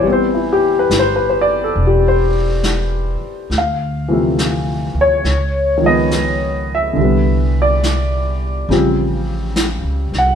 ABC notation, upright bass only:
X:1
M:4/4
L:1/8
Q:"Swing" 1/4=70
K:Am
V:1 name="Upright bass" clef=bass
A,,,2 G,,,2 E,,,3 z | D,,3 D,, _D,,4 | C,,4 A,,,2- (3A,,, ^C,, ^B,,, |]